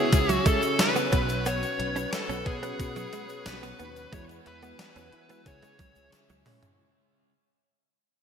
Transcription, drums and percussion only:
0.12 kick loud
0.12 closed hi-hat loud
0.12 shaker medium
0.29 closed hi-hat medium
0.29 shaker medium
0.46 kick loud
0.46 closed hi-hat medium
0.46 shaker medium
0.62 closed hi-hat medium
0.62 shaker soft
0.79 snare loud
0.79 closed hi-hat medium
0.79 tambourine medium
0.79 shaker medium
0.96 closed hi-hat medium
0.96 shaker soft
1.12 kick loud
1.12 closed hi-hat medium
1.12 shaker soft
1.29 closed hi-hat medium
1.29 shaker soft
1.46 closed hi-hat medium
1.46 shaker medium
1.63 closed hi-hat medium
1.63 shaker soft
1.80 closed hi-hat medium
1.96 closed hi-hat medium
1.96 shaker medium
2.13 snare loud
2.13 closed hi-hat medium
2.13 tambourine medium
2.13 shaker medium
2.30 closed hi-hat medium
2.30 shaker medium
2.46 kick medium
2.46 closed hi-hat medium
2.63 closed hi-hat medium
2.63 shaker soft
2.80 kick loud
2.80 closed hi-hat loud
2.80 shaker medium
2.96 closed hi-hat medium
2.96 shaker medium
3.13 closed hi-hat medium
3.13 shaker medium
3.29 closed hi-hat medium
3.29 shaker soft
3.46 snare loud
3.46 closed hi-hat medium
3.46 tambourine medium
3.46 shaker medium
3.63 closed hi-hat soft
3.63 shaker medium
3.79 closed hi-hat medium
3.79 shaker soft
3.96 closed hi-hat medium
3.96 shaker soft
4.13 kick loud
4.13 closed hi-hat medium
4.13 shaker medium
4.29 closed hi-hat medium
4.29 shaker medium
4.46 closed hi-hat medium
4.62 closed hi-hat medium
4.62 shaker medium
4.79 snare loud
4.79 closed hi-hat medium
4.79 tambourine medium
4.79 shaker medium
4.96 closed hi-hat medium
4.96 shaker medium
5.12 closed hi-hat medium
5.29 closed hi-hat medium
5.29 shaker soft
5.46 kick loud
5.46 closed hi-hat loud
5.46 shaker medium
5.62 closed hi-hat medium
5.62 shaker medium
5.79 kick medium
5.79 closed hi-hat medium
5.79 shaker medium
5.95 closed hi-hat medium
5.95 shaker soft
6.12 snare medium
6.12 closed hi-hat medium
6.12 shaker medium
6.30 closed hi-hat medium
6.30 shaker medium
6.45 mid tom loud
6.45 open hi-hat medium
6.45 shaker soft
6.63 closed hi-hat medium
6.63 floor tom loud
6.63 shaker soft

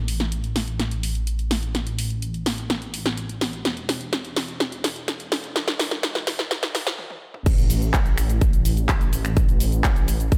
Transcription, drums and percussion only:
0.08 open hi-hat loud
0.20 snare soft
0.20 closed hi-hat soft
0.32 closed hi-hat medium
0.44 closed hi-hat soft
0.56 snare soft
0.56 open hi-hat medium
0.68 closed hi-hat soft
0.80 snare soft
0.80 closed hi-hat medium
0.91 closed hi-hat soft
1.03 open hi-hat loud
1.15 closed hi-hat soft
1.27 closed hi-hat medium
1.39 closed hi-hat soft
1.51 snare medium
1.51 open hi-hat medium
1.63 closed hi-hat soft
1.75 snare medium
1.75 closed hi-hat medium
1.87 closed hi-hat soft
1.99 open hi-hat loud
2.10 closed hi-hat soft
2.22 closed hi-hat medium
2.34 closed hi-hat soft
2.46 snare medium
2.46 open hi-hat loud
2.58 closed hi-hat soft
2.70 snare medium
2.70 closed hi-hat medium
2.82 closed hi-hat soft
2.94 open hi-hat loud
3.06 snare medium
3.06 closed hi-hat soft
3.18 closed hi-hat medium
3.29 closed hi-hat soft
3.41 snare medium
3.41 open hi-hat medium
3.53 closed hi-hat soft
3.65 snare medium
3.65 closed hi-hat medium
3.77 closed hi-hat soft
3.89 snare medium
3.89 open hi-hat loud
4.01 closed hi-hat soft
4.13 snare medium
4.13 closed hi-hat medium
4.25 closed hi-hat soft
4.37 snare medium
4.37 open hi-hat loud
4.48 closed hi-hat soft
4.60 snare medium
4.60 closed hi-hat medium
4.72 closed hi-hat soft
4.84 snare medium
4.84 open hi-hat loud
4.96 closed hi-hat soft
5.08 snare medium
5.08 closed hi-hat medium
5.20 closed hi-hat soft
5.32 snare medium
5.32 open hi-hat medium
5.44 closed hi-hat soft
5.56 snare medium
5.56 closed hi-hat medium
5.68 snare medium
5.68 closed hi-hat soft
5.79 snare loud
5.79 open hi-hat loud
5.91 snare medium
5.91 closed hi-hat soft
6.03 snare loud
6.03 closed hi-hat medium
6.15 snare medium
6.15 closed hi-hat soft
6.27 snare loud
6.27 open hi-hat loud
6.39 snare medium
6.51 snare loud
6.51 closed hi-hat medium
6.63 snare medium
6.63 closed hi-hat soft
6.75 snare loud
6.75 open hi-hat loud
6.87 snare loud
6.87 closed hi-hat soft
6.99 high tom medium
7.10 high tom medium
7.34 mid tom medium
7.46 kick loud
7.46 closed hi-hat medium
7.46 crash loud
7.46 cabasa soft
7.58 closed hi-hat soft
7.58 cabasa soft
7.70 open hi-hat loud
7.70 cabasa medium
7.82 closed hi-hat soft
7.82 cabasa soft
7.94 kick loud
7.94 clap loud
7.94 closed hi-hat medium
7.94 cabasa soft
8.06 closed hi-hat soft
8.06 cabasa soft
8.18 finger snap medium
8.18 open hi-hat medium
8.18 cabasa medium
8.30 closed hi-hat soft
8.30 cabasa soft
8.41 kick loud
8.41 closed hi-hat medium
8.41 cabasa soft
8.53 closed hi-hat soft
8.53 cabasa soft
8.65 open hi-hat loud
8.65 cabasa medium
8.77 closed hi-hat soft
8.77 cabasa soft
8.89 kick loud
8.89 clap loud
8.89 closed hi-hat medium
8.89 cabasa soft
9.01 closed hi-hat soft
9.01 cabasa soft
9.13 open hi-hat medium
9.13 cabasa medium
9.25 finger snap medium
9.25 closed hi-hat soft
9.25 cabasa soft
9.37 kick loud
9.37 closed hi-hat medium
9.37 cabasa soft
9.49 closed hi-hat soft
9.49 cabasa soft
9.60 open hi-hat loud
9.60 cabasa medium
9.72 closed hi-hat soft
9.72 cabasa soft
9.84 kick loud
9.84 clap loud
9.84 closed hi-hat medium
9.84 cabasa soft
9.96 closed hi-hat soft
9.96 cabasa soft
10.08 open hi-hat loud
10.08 cabasa medium
10.20 closed hi-hat soft
10.20 cabasa soft
10.32 kick loud
10.32 closed hi-hat medium
10.32 cabasa soft

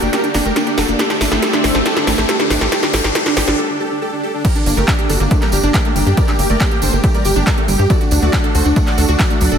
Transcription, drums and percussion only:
0.02 closed hi-hat soft
0.02 tambourine soft
0.13 snare medium
0.13 closed hi-hat medium
0.13 tambourine soft
0.24 closed hi-hat soft
0.24 tambourine soft
0.34 snare medium
0.34 open hi-hat loud
0.34 tambourine medium
0.45 closed hi-hat soft
0.56 snare medium
0.56 closed hi-hat medium
0.56 tambourine soft
0.67 closed hi-hat soft
0.78 snare medium
0.78 open hi-hat loud
0.78 tambourine medium
0.89 closed hi-hat soft
0.89 tambourine soft
0.99 snare medium
0.99 closed hi-hat medium
0.99 tambourine soft
1.10 snare medium
1.10 closed hi-hat soft
1.10 tambourine soft
1.21 snare medium
1.21 open hi-hat loud
1.21 tambourine medium
1.31 snare medium
1.31 closed hi-hat soft
1.31 tambourine soft
1.42 snare loud
1.42 closed hi-hat loud
1.42 tambourine soft
1.53 snare medium
1.53 closed hi-hat soft
1.64 snare loud
1.64 open hi-hat loud
1.64 tambourine medium
1.75 snare medium
1.75 closed hi-hat soft
1.75 tambourine soft
1.86 snare loud
1.86 closed hi-hat loud
1.86 tambourine soft
1.96 snare medium
1.96 closed hi-hat soft
1.96 tambourine soft
2.07 snare loud
2.07 open hi-hat loud
2.07 tambourine medium
2.18 snare medium
2.18 closed hi-hat soft
2.18 tambourine soft
2.29 snare loud
2.29 closed hi-hat loud
2.29 tambourine soft
2.40 snare medium
2.40 closed hi-hat soft
2.50 snare loud
2.50 open hi-hat loud
2.50 tambourine medium
2.60 snare medium
2.60 closed hi-hat soft
2.60 tambourine soft
2.72 snare loud
2.72 closed hi-hat loud
2.72 tambourine medium
2.83 snare medium
2.83 closed hi-hat soft
2.83 tambourine soft
2.93 snare loud
2.93 open hi-hat loud
2.93 tambourine medium
3.04 snare medium
3.04 closed hi-hat soft
3.04 tambourine soft
3.15 snare loud
3.15 closed hi-hat loud
3.15 tambourine medium
3.26 snare medium
3.26 closed hi-hat soft
3.26 tambourine soft
3.37 snare loud
3.37 open hi-hat loud
3.37 tambourine medium
3.48 snare medium
3.48 closed hi-hat soft
3.48 tambourine soft
4.45 kick loud
4.45 closed hi-hat loud
4.45 tambourine medium
4.45 crash loud
4.56 closed hi-hat soft
4.56 tambourine soft
4.66 open hi-hat loud
4.66 tambourine medium
4.77 closed hi-hat soft
4.77 tambourine soft
4.88 kick loud
4.88 clap loud
4.88 closed hi-hat loud
4.88 tambourine medium
4.99 closed hi-hat soft
5.09 open hi-hat loud
5.09 tambourine medium
5.20 closed hi-hat soft
5.20 tambourine soft
5.31 kick loud
5.31 closed hi-hat loud
5.31 tambourine medium
5.42 clap soft
5.42 closed hi-hat soft
5.42 tambourine soft
5.52 open hi-hat loud
5.52 tambourine loud
5.63 closed hi-hat soft
5.63 tambourine soft
5.74 kick loud
5.74 clap loud
5.74 closed hi-hat loud
5.74 tambourine medium
5.85 closed hi-hat soft
5.96 open hi-hat loud
5.96 tambourine loud
6.07 closed hi-hat soft
6.07 tambourine soft
6.17 kick loud
6.17 closed hi-hat loud
6.17 tambourine medium
6.28 clap soft
6.28 closed hi-hat soft
6.28 tambourine soft
6.39 open hi-hat loud
6.39 tambourine medium
6.50 closed hi-hat soft
6.50 tambourine soft
6.60 kick loud
6.60 clap loud
6.60 closed hi-hat medium
6.60 tambourine medium
6.71 closed hi-hat soft
6.82 open hi-hat loud
6.82 tambourine loud
6.93 closed hi-hat soft
6.93 tambourine soft
7.04 kick loud
7.04 closed hi-hat loud
7.04 tambourine medium
7.14 closed hi-hat soft
7.14 tambourine soft
7.25 open hi-hat loud
7.25 tambourine loud
7.36 closed hi-hat soft
7.36 tambourine soft
7.47 kick loud
7.47 clap loud
7.47 closed hi-hat medium
7.58 closed hi-hat soft
7.68 open hi-hat loud
7.68 tambourine medium
7.79 closed hi-hat soft
7.79 tambourine soft
7.90 kick loud
7.90 closed hi-hat medium
7.90 tambourine medium
8.01 closed hi-hat soft
8.01 tambourine soft
8.11 open hi-hat loud
8.11 tambourine loud
8.22 closed hi-hat soft
8.22 tambourine soft
8.33 kick loud
8.33 clap loud
8.33 closed hi-hat medium
8.33 tambourine soft
8.44 closed hi-hat soft
8.55 open hi-hat loud
8.55 tambourine medium
8.66 closed hi-hat soft
8.66 tambourine soft
8.76 kick loud
8.76 closed hi-hat medium
8.76 tambourine medium
8.87 clap soft
8.87 closed hi-hat soft
8.87 tambourine soft
8.98 open hi-hat loud
8.98 tambourine medium
9.09 closed hi-hat soft
9.09 tambourine soft
9.19 kick loud
9.19 clap loud
9.19 closed hi-hat medium
9.19 tambourine medium
9.30 closed hi-hat soft
9.41 open hi-hat loud
9.41 tambourine medium
9.52 closed hi-hat soft
9.52 tambourine soft

